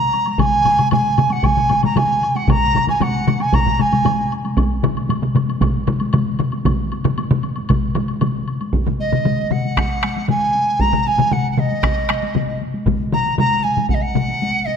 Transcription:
Already playing: dizi A#5
0.13 taiko high, high woodblock
0.26 taiko high, high woodblock
0.33 dizi A#5
0.38 dizi G#5, taiko, taiko low-mid, taiko mid, taiko high, high woodblock
0.65 taiko low-mid, taiko mid, taiko high, high woodblock
0.79 taiko low-mid, taiko mid, taiko high, high woodblock
0.91 dizi G#5, taiko low-mid, taiko mid, taiko high, high woodblock
1.18 taiko low-mid, taiko mid, taiko high, high woodblock
1.30 dizi F#5, taiko high, high woodblock
1.43 dizi G#5, taiko, taiko low-mid, taiko mid, taiko high, high woodblock
1.57 taiko low-mid, taiko mid
1.69 taiko low-mid, taiko mid, taiko high, high woodblock
1.83 dizi A#5, taiko low-mid, taiko mid, taiko high, high woodblock
1.96 dizi G#5, taiko low-mid, taiko mid, taiko high, high woodblock
2.23 high woodblock
2.35 dizi F#5, taiko high, high woodblock
2.48 dizi A#5, taiko, taiko low-mid, taiko mid, taiko high, high woodblock
2.74 taiko low-mid, taiko mid, taiko high, high woodblock
2.87 dizi G#5, taiko low-mid, taiko mid, taiko high, high woodblock
3.00 dizi F#5, taiko low-mid, taiko mid, taiko high, high woodblock
3.27 taiko low-mid, taiko mid, taiko high, high woodblock
3.40 dizi G#5, taiko high, high woodblock
3.53 dizi A#5, taiko, taiko low-mid, taiko mid, taiko high, high woodblock
3.66 taiko low-mid, taiko mid
3.79 dizi G#5, taiko low-mid, taiko mid, taiko high, high woodblock
3.92 taiko low-mid, taiko mid, taiko high, high woodblock
4.05 taiko low-mid, taiko mid, taiko high, high woodblock
4.32 high woodblock
4.45 taiko high, high woodblock
4.57 taiko, taiko high, high woodblock
4.83 taiko low-mid, taiko mid, taiko high, high woodblock
4.97 taiko high, high woodblock
5.09 taiko low-mid, taiko mid, taiko high, high woodblock
5.22 taiko low-mid, taiko mid
5.35 taiko low-mid, taiko mid, taiko high, high woodblock
5.49 taiko high, high woodblock
5.61 taiko, taiko low-mid, taiko mid, taiko high, high woodblock
5.87 taiko low-mid, taiko mid, taiko high, high woodblock
6.00 taiko high, high woodblock
6.13 taiko low-mid, taiko mid, taiko high, high woodblock
6.39 taiko low-mid, taiko mid, high woodblock
6.52 taiko high, high woodblock
6.65 taiko, taiko low-mid, taiko mid, taiko high, high woodblock
6.92 taiko high, high woodblock
7.04 taiko low-mid, taiko mid, taiko high, high woodblock
7.18 taiko high, high woodblock
7.31 taiko low-mid, taiko mid
7.43 taiko high, high woodblock
7.56 taiko high, high woodblock
7.69 taiko, taiko low-mid, taiko mid, taiko high, high woodblock
7.95 taiko low-mid, taiko mid, taiko high, high woodblock
8.08 high woodblock
8.21 taiko low-mid, taiko mid, taiko high, high woodblock
8.48 high woodblock
8.61 taiko high, high woodblock
8.73 taiko, taiko high
8.87 taiko low-mid, taiko mid
9.00 dizi D#5, taiko high
9.12 taiko low-mid, taiko mid, taiko high
9.25 taiko low-mid, taiko mid, taiko high
9.51 dizi F#5, taiko low-mid, taiko mid, taiko high
9.65 taiko high
9.77 taiko rim, taiko, taiko high
10.03 taiko rim, taiko high
10.16 taiko high
10.28 dizi G#5, taiko low-mid, taiko mid, taiko high
10.55 taiko high
10.79 dizi A#5, taiko, taiko high
10.93 taiko low-mid, taiko mid
11.07 dizi G#5, taiko high
11.18 taiko low-mid, taiko mid, taiko high
11.31 dizi F#5, taiko low-mid, taiko mid, taiko high
11.51 dizi F#5
11.58 dizi D#5, taiko low-mid, taiko mid, taiko high
11.71 taiko high
11.83 taiko rim, taiko, taiko high
12.09 taiko rim, taiko high
12.23 taiko high
12.35 taiko low-mid, taiko mid, taiko high
12.62 taiko high
12.74 taiko high
12.86 taiko, taiko low-mid, taiko mid, taiko high
13.12 dizi A#5, taiko low-mid, taiko mid, taiko high
13.26 taiko high
13.38 dizi A#5, taiko low-mid, taiko mid, taiko high
13.63 dizi G#5, taiko high
13.77 taiko low-mid, taiko mid, taiko high
13.89 dizi F#5, taiko, taiko high
13.94 dizi D#5
14.02 dizi F#5
14.15 taiko low-mid, taiko mid, taiko high
14.29 taiko high
14.42 taiko high
14.66 dizi D#5, taiko high

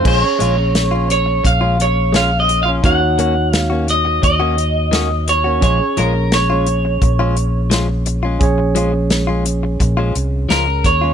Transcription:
0.03 fingered electric bass A#1, clean electric guitar G#3 C#4, tine electric piano C#4 G#4 C#5, kick, crash
0.07 clean electric guitar F4 C5
0.19 clean electric guitar C#5, muted clean electric guitar stroke
0.39 fingered electric bass A#1, clean electric guitar G#3 C#4 F4, closed hi-hat
0.57 muted clean electric guitar stroke
0.75 snare, closed hi-hat
0.91 clean electric guitar C#4 F4
1.08 clean electric guitar C#5, muted clean electric guitar stroke, closed hi-hat
1.26 muted clean electric guitar stroke
1.44 fingered electric bass A#1, clean electric guitar F5, muted clean electric guitar stroke, kick, closed hi-hat
1.61 clean electric guitar G#3 C#4 F4
1.78 clean electric guitar C#5, muted clean electric guitar stroke, closed hi-hat
2.12 clean electric guitar G#3 C#4 F4 F5, snare, closed hi-hat
2.31 muted clean electric guitar stroke
2.40 clean electric guitar D#5
2.48 muted clean electric guitar stroke, closed hi-hat
2.63 clean electric guitar F4 F5
2.69 clean electric guitar C#4
2.82 fingered electric bass D#2, clean electric guitar D#3 A#3 C#4 F#4 F#5, tine electric piano D#4 F#4 C#5, kick, closed hi-hat
3.01 muted clean electric guitar stroke
3.18 clean electric guitar D#3 A#3 C#4 F#4, closed hi-hat
3.36 muted clean electric guitar stroke
3.52 clean electric guitar F5, snare, closed hi-hat
3.70 clean electric guitar A#3 C#4 F#4
3.88 clean electric guitar D#5, muted clean electric guitar stroke, closed hi-hat
4.05 muted clean electric guitar stroke
4.22 fingered electric bass D#2, clean electric guitar D#5, muted clean electric guitar stroke, kick, closed hi-hat
4.40 clean electric guitar D#3 A#3 C#4 F#4
4.57 muted clean electric guitar stroke, closed hi-hat
4.91 clean electric guitar D#3 A#3 C#4 F#4, snare, closed hi-hat
5.10 muted clean electric guitar stroke
5.28 clean electric guitar C#5, muted clean electric guitar stroke, closed hi-hat
5.44 clean electric guitar A#3 C#4 F#4
5.60 fingered electric bass A#1, clean electric guitar F3 G#3 C#4 F4 C#5, tine electric piano C#4 G#4 C#5, kick, closed hi-hat
5.80 muted clean electric guitar stroke
5.97 fingered electric bass A#1, clean electric guitar F3 G#3 C#4 F4 A#4, closed hi-hat
6.15 muted clean electric guitar stroke
6.32 clean electric guitar C#5, snare, closed hi-hat
6.50 clean electric guitar G#3 C#4 F4
6.66 muted clean electric guitar stroke, closed hi-hat
6.85 muted clean electric guitar stroke
7.02 fingered electric bass A#1, muted clean electric guitar stroke, kick, closed hi-hat
7.19 clean electric guitar F3 G#3 C#4 F4
7.36 muted clean electric guitar stroke, closed hi-hat
7.70 clean electric guitar F3 G#3 C#4 F4, snare, closed hi-hat
7.89 muted clean electric guitar stroke
8.06 muted clean electric guitar stroke, closed hi-hat
8.23 clean electric guitar G#3 C#4 F4
8.39 fingered electric bass A#1, tine electric piano C#4 G#4 C#5, kick, closed hi-hat
8.58 muted clean electric guitar stroke
8.75 clean electric guitar F3 G#3 C#4 F4, closed hi-hat
8.93 muted clean electric guitar stroke
9.10 snare, closed hi-hat
9.27 clean electric guitar G#3 C#4 F4
9.45 muted clean electric guitar stroke, closed hi-hat
9.63 muted clean electric guitar stroke
9.80 fingered electric bass A#1, muted clean electric guitar stroke, kick, closed hi-hat
9.97 clean electric guitar F3 G#3 C#4 F4
10.15 fingered electric bass C2, muted clean electric guitar stroke, closed hi-hat
10.49 fingered electric bass C#2, clean electric guitar F3 G#3 C#4 F4 A#4, snare, closed hi-hat
10.67 muted clean electric guitar stroke
10.84 fingered electric bass D#2, clean electric guitar C#5, muted clean electric guitar stroke, kick, closed hi-hat
11.01 clean electric guitar G#3 C#4 F4

